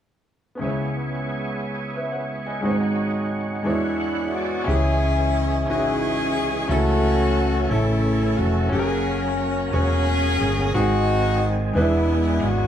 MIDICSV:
0, 0, Header, 1, 5, 480
1, 0, Start_track
1, 0, Key_signature, 4, "minor"
1, 0, Tempo, 675676
1, 433, Time_signature, 6, 3, 24, 8
1, 9002, End_track
2, 0, Start_track
2, 0, Title_t, "Grand piano"
2, 0, Program_c, 0, 0
2, 392, Note_on_c, 0, 59, 44
2, 408, Note_on_c, 0, 61, 45
2, 421, Note_on_c, 0, 64, 43
2, 422, Note_on_c, 0, 37, 44
2, 422, Note_on_c, 0, 49, 43
2, 430, Note_on_c, 0, 68, 41
2, 450, Note_on_c, 0, 73, 52
2, 568, Control_c, 0, 64, 127
2, 1388, Note_off_c, 0, 73, 0
2, 1390, Note_on_c, 0, 76, 42
2, 1396, Note_on_c, 0, 71, 36
2, 1506, Note_on_c, 0, 78, 43
2, 1509, Note_off_c, 0, 76, 0
2, 1509, Note_on_c, 0, 73, 36
2, 1512, Note_off_c, 0, 71, 0
2, 1741, Note_off_c, 0, 78, 0
2, 1743, Note_off_c, 0, 73, 0
2, 1750, Note_on_c, 0, 80, 44
2, 1753, Note_on_c, 0, 75, 42
2, 1832, Note_off_c, 0, 59, 0
2, 1840, Note_off_c, 0, 61, 0
2, 1846, Note_off_c, 0, 64, 0
2, 1847, Note_off_c, 0, 37, 0
2, 1847, Note_off_c, 0, 49, 0
2, 1851, Note_off_c, 0, 68, 0
2, 1854, Note_on_c, 0, 56, 49
2, 1862, Note_on_c, 0, 61, 46
2, 1863, Note_on_c, 0, 63, 46
2, 1865, Note_on_c, 0, 44, 45
2, 1867, Note_on_c, 0, 32, 48
2, 1871, Note_on_c, 0, 66, 46
2, 1881, Note_on_c, 0, 72, 46
2, 1890, Control_c, 0, 64, 0
2, 1927, Note_off_c, 0, 72, 0
2, 1927, Note_on_c, 0, 73, 57
2, 1984, Note_off_c, 0, 80, 0
2, 1986, Note_off_c, 0, 75, 0
2, 2009, Control_c, 0, 64, 127
2, 2566, Note_off_c, 0, 56, 0
2, 2567, Note_off_c, 0, 44, 0
2, 2568, Note_off_c, 0, 32, 0
2, 2577, Note_on_c, 0, 56, 53
2, 2584, Note_on_c, 0, 62, 46
2, 2587, Note_off_c, 0, 66, 0
2, 2590, Note_on_c, 0, 52, 50
2, 2592, Note_off_c, 0, 73, 0
2, 2593, Note_on_c, 0, 40, 51
2, 2594, Note_off_c, 0, 61, 0
2, 2594, Note_off_c, 0, 63, 0
2, 2594, Note_on_c, 0, 64, 49
2, 2598, Note_on_c, 0, 66, 48
2, 2602, Note_on_c, 0, 73, 56
2, 2612, Control_c, 0, 64, 0
2, 2721, Control_c, 0, 64, 127
2, 3290, Note_off_c, 0, 52, 0
2, 3291, Note_off_c, 0, 40, 0
2, 3296, Note_off_c, 0, 64, 0
2, 3298, Note_on_c, 0, 61, 71
2, 3307, Note_on_c, 0, 64, 66
2, 3308, Note_on_c, 0, 49, 56
2, 3311, Note_off_c, 0, 56, 0
2, 3315, Note_off_c, 0, 62, 0
2, 3320, Note_on_c, 0, 67, 59
2, 3322, Note_off_c, 0, 66, 0
2, 3324, Note_off_c, 0, 73, 0
2, 3332, Control_c, 0, 64, 0
2, 3367, Note_on_c, 0, 68, 73
2, 3368, Note_off_c, 0, 67, 0
2, 3439, Control_c, 0, 64, 127
2, 3885, Note_off_c, 0, 61, 0
2, 3889, Note_off_c, 0, 64, 0
2, 3919, Note_off_c, 0, 68, 0
2, 4008, Note_off_c, 0, 49, 0
2, 4023, Note_on_c, 0, 61, 60
2, 4039, Note_on_c, 0, 63, 46
2, 4048, Note_on_c, 0, 66, 65
2, 4085, Note_on_c, 0, 64, 60
2, 4088, Note_off_c, 0, 63, 0
2, 4606, Note_off_c, 0, 61, 0
2, 4619, Note_off_c, 0, 66, 0
2, 4637, Note_off_c, 0, 64, 0
2, 4744, Note_on_c, 0, 61, 74
2, 4751, Note_on_c, 0, 49, 58
2, 4753, Note_on_c, 0, 64, 67
2, 4767, Note_on_c, 0, 69, 75
2, 4773, Control_c, 0, 64, 0
2, 4895, Control_c, 0, 64, 127
2, 5326, Note_off_c, 0, 61, 0
2, 5331, Note_off_c, 0, 64, 0
2, 5337, Note_off_c, 0, 69, 0
2, 5447, Note_off_c, 0, 49, 0
2, 5464, Note_on_c, 0, 61, 64
2, 5474, Note_on_c, 0, 64, 57
2, 5487, Note_on_c, 0, 69, 69
2, 6044, Note_off_c, 0, 61, 0
2, 6049, Note_off_c, 0, 64, 0
2, 6056, Note_off_c, 0, 69, 0
2, 6174, Note_on_c, 0, 61, 69
2, 6188, Note_on_c, 0, 66, 64
2, 6199, Note_on_c, 0, 69, 68
2, 6210, Control_c, 0, 64, 0
2, 6245, Note_off_c, 0, 69, 0
2, 6246, Note_on_c, 0, 70, 81
2, 6322, Control_c, 0, 64, 127
2, 6758, Note_off_c, 0, 61, 0
2, 6765, Note_off_c, 0, 66, 0
2, 6794, Note_off_c, 0, 70, 0
2, 6899, Note_on_c, 0, 61, 62
2, 6909, Note_on_c, 0, 66, 59
2, 6920, Note_on_c, 0, 73, 68
2, 7479, Note_off_c, 0, 61, 0
2, 7484, Note_off_c, 0, 66, 0
2, 7489, Note_off_c, 0, 73, 0
2, 7620, Note_on_c, 0, 60, 68
2, 7634, Note_on_c, 0, 44, 62
2, 7635, Note_on_c, 0, 63, 64
2, 7643, Control_c, 0, 64, 0
2, 7643, Note_on_c, 0, 68, 84
2, 7775, Control_c, 0, 64, 127
2, 8197, Note_off_c, 0, 60, 0
2, 8205, Note_off_c, 0, 63, 0
2, 8209, Note_off_c, 0, 68, 0
2, 8322, Note_off_c, 0, 44, 0
2, 8333, Note_on_c, 0, 56, 63
2, 8343, Note_on_c, 0, 59, 53
2, 8345, Note_on_c, 0, 62, 57
2, 8346, Note_on_c, 0, 52, 62
2, 8350, Note_on_c, 0, 64, 57
2, 8360, Control_c, 0, 64, 0
2, 8361, Note_on_c, 0, 71, 68
2, 8496, Control_c, 0, 64, 127
2, 8912, Note_off_c, 0, 56, 0
2, 8917, Note_off_c, 0, 59, 0
2, 8918, Note_off_c, 0, 62, 0
2, 8920, Note_off_c, 0, 64, 0
2, 8926, Note_off_c, 0, 71, 0
2, 9002, Note_off_c, 0, 52, 0
2, 9002, End_track
3, 0, Start_track
3, 0, Title_t, "Saxophone section"
3, 0, Program_c, 1, 65
3, 2594, Note_on_c, 1, 56, 50
3, 2601, Note_on_c, 1, 59, 49
3, 2606, Note_on_c, 1, 64, 64
3, 3057, Note_off_c, 1, 64, 0
3, 3075, Note_on_c, 1, 66, 75
3, 3291, Note_off_c, 1, 56, 0
3, 3295, Note_off_c, 1, 59, 0
3, 3320, Note_off_c, 1, 66, 0
3, 3326, Note_on_c, 1, 68, 101
3, 3327, Note_on_c, 1, 64, 80
3, 3328, Note_on_c, 1, 61, 72
3, 3805, Note_off_c, 1, 68, 0
3, 4017, Note_off_c, 1, 64, 0
3, 4018, Note_off_c, 1, 61, 0
3, 4048, Note_on_c, 1, 61, 74
3, 4049, Note_on_c, 1, 64, 81
3, 4051, Note_on_c, 1, 68, 105
3, 4737, Note_off_c, 1, 61, 0
3, 4737, Note_off_c, 1, 64, 0
3, 4739, Note_off_c, 1, 68, 0
3, 4752, Note_on_c, 1, 57, 76
3, 4755, Note_on_c, 1, 66, 101
3, 4756, Note_on_c, 1, 61, 77
3, 5448, Note_off_c, 1, 57, 0
3, 5449, Note_off_c, 1, 66, 0
3, 5450, Note_off_c, 1, 61, 0
3, 5475, Note_on_c, 1, 64, 87
3, 5481, Note_on_c, 1, 57, 66
3, 5484, Note_on_c, 1, 61, 64
3, 5949, Note_on_c, 1, 66, 80
3, 5957, Note_off_c, 1, 64, 0
3, 6170, Note_off_c, 1, 57, 0
3, 6172, Note_off_c, 1, 61, 0
3, 6194, Note_off_c, 1, 66, 0
3, 6197, Note_on_c, 1, 68, 94
3, 6202, Note_on_c, 1, 61, 67
3, 6648, Note_off_c, 1, 68, 0
3, 6889, Note_off_c, 1, 61, 0
3, 6911, Note_on_c, 1, 68, 110
3, 6913, Note_on_c, 1, 61, 78
3, 7602, Note_off_c, 1, 68, 0
3, 7603, Note_off_c, 1, 61, 0
3, 7632, Note_on_c, 1, 66, 108
3, 7635, Note_on_c, 1, 63, 83
3, 7638, Note_on_c, 1, 60, 75
3, 8233, Note_off_c, 1, 60, 0
3, 8233, Note_off_c, 1, 63, 0
3, 8233, Note_off_c, 1, 66, 0
3, 8354, Note_on_c, 1, 56, 64
3, 8355, Note_on_c, 1, 59, 69
3, 8359, Note_on_c, 1, 64, 92
3, 8832, Note_off_c, 1, 64, 0
3, 8841, Note_on_c, 1, 66, 78
3, 9002, Note_off_c, 1, 56, 0
3, 9002, Note_off_c, 1, 59, 0
3, 9002, Note_off_c, 1, 66, 0
3, 9002, End_track
4, 0, Start_track
4, 0, Title_t, "Tonewheel organ"
4, 0, Program_c, 2, 16
4, 437, Note_on_c, 2, 59, 46
4, 437, Note_on_c, 2, 73, 50
4, 439, Note_on_c, 2, 68, 39
4, 440, Note_on_c, 2, 64, 42
4, 1854, Note_off_c, 2, 59, 0
4, 1854, Note_off_c, 2, 73, 0
4, 1855, Note_off_c, 2, 68, 0
4, 1856, Note_off_c, 2, 64, 0
4, 1875, Note_on_c, 2, 56, 50
4, 1879, Note_on_c, 2, 66, 47
4, 1880, Note_on_c, 2, 63, 43
4, 1885, Note_on_c, 2, 73, 58
4, 2586, Note_off_c, 2, 73, 0
4, 2590, Note_off_c, 2, 66, 0
4, 2591, Note_off_c, 2, 56, 0
4, 2595, Note_on_c, 2, 73, 59
4, 2599, Note_on_c, 2, 56, 54
4, 2599, Note_on_c, 2, 66, 51
4, 2600, Note_on_c, 2, 62, 50
4, 2602, Note_on_c, 2, 64, 48
4, 2603, Note_off_c, 2, 63, 0
4, 2838, Note_on_c, 2, 78, 53
4, 3064, Note_off_c, 2, 78, 0
4, 3087, Note_on_c, 2, 74, 49
4, 3309, Note_off_c, 2, 74, 0
4, 3320, Note_off_c, 2, 73, 0
4, 3322, Note_off_c, 2, 56, 0
4, 3322, Note_off_c, 2, 66, 0
4, 3323, Note_off_c, 2, 62, 0
4, 3324, Note_off_c, 2, 64, 0
4, 3334, Note_on_c, 2, 68, 60
4, 3335, Note_on_c, 2, 52, 55
4, 3337, Note_on_c, 2, 56, 50
4, 3342, Note_on_c, 2, 61, 47
4, 4740, Note_off_c, 2, 52, 0
4, 4740, Note_off_c, 2, 68, 0
4, 4742, Note_off_c, 2, 56, 0
4, 4744, Note_off_c, 2, 61, 0
4, 4756, Note_on_c, 2, 52, 57
4, 4758, Note_on_c, 2, 57, 51
4, 4759, Note_on_c, 2, 69, 61
4, 4760, Note_on_c, 2, 61, 52
4, 6167, Note_off_c, 2, 52, 0
4, 6168, Note_off_c, 2, 57, 0
4, 6169, Note_off_c, 2, 61, 0
4, 6169, Note_off_c, 2, 69, 0
4, 6207, Note_on_c, 2, 61, 52
4, 6208, Note_on_c, 2, 69, 51
4, 6209, Note_on_c, 2, 54, 62
4, 6210, Note_on_c, 2, 58, 52
4, 6249, Note_off_c, 2, 69, 0
4, 6254, Note_on_c, 2, 70, 65
4, 7609, Note_off_c, 2, 61, 0
4, 7610, Note_off_c, 2, 54, 0
4, 7610, Note_off_c, 2, 58, 0
4, 7632, Note_off_c, 2, 70, 0
4, 7639, Note_on_c, 2, 51, 63
4, 7642, Note_on_c, 2, 68, 66
4, 7646, Note_on_c, 2, 56, 55
4, 7648, Note_on_c, 2, 59, 42
4, 7684, Note_on_c, 2, 60, 50
4, 7686, Note_off_c, 2, 59, 0
4, 8343, Note_off_c, 2, 68, 0
4, 8350, Note_on_c, 2, 59, 54
4, 8351, Note_on_c, 2, 68, 65
4, 8352, Note_on_c, 2, 62, 53
4, 8353, Note_off_c, 2, 51, 0
4, 8354, Note_on_c, 2, 52, 65
4, 8356, Note_off_c, 2, 56, 0
4, 8375, Note_off_c, 2, 60, 0
4, 9002, Note_off_c, 2, 52, 0
4, 9002, Note_off_c, 2, 59, 0
4, 9002, Note_off_c, 2, 62, 0
4, 9002, Note_off_c, 2, 68, 0
4, 9002, End_track
5, 0, Start_track
5, 0, Title_t, "Fingered electric bass"
5, 0, Program_c, 3, 33
5, 3323, Note_on_c, 3, 37, 87
5, 4041, Note_off_c, 3, 37, 0
5, 4041, Note_on_c, 3, 32, 89
5, 4520, Note_off_c, 3, 32, 0
5, 4520, Note_on_c, 3, 36, 83
5, 4742, Note_off_c, 3, 36, 0
5, 4754, Note_on_c, 3, 37, 104
5, 5448, Note_off_c, 3, 37, 0
5, 5477, Note_on_c, 3, 33, 90
5, 5929, Note_off_c, 3, 33, 0
5, 5957, Note_on_c, 3, 29, 86
5, 6178, Note_off_c, 3, 29, 0
5, 6197, Note_on_c, 3, 30, 100
5, 6887, Note_off_c, 3, 30, 0
5, 6917, Note_on_c, 3, 28, 89
5, 7366, Note_off_c, 3, 28, 0
5, 7397, Note_on_c, 3, 31, 79
5, 7615, Note_off_c, 3, 31, 0
5, 7635, Note_on_c, 3, 32, 105
5, 8322, Note_off_c, 3, 32, 0
5, 8353, Note_on_c, 3, 28, 85
5, 8801, Note_off_c, 3, 28, 0
5, 8831, Note_on_c, 3, 32, 72
5, 9002, Note_off_c, 3, 32, 0
5, 9002, End_track
0, 0, End_of_file